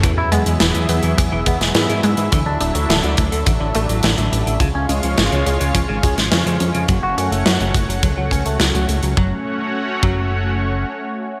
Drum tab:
HH |x-xxxxxxx-xxxxxx|x-xxxxxxx-xxxxxx|x-xxxxxxx-xxxxxx|x-xxxxxxx-xxxxxx|
SD |----o------oo---|----o-------o---|----o------oo---|----o-------o---|
BD |o-------o-o-----|o-----o-o-------|o-------o-o-----|o-----o-o-o-----|

HH |----------------|
SD |----------------|
BD |o-----o---------|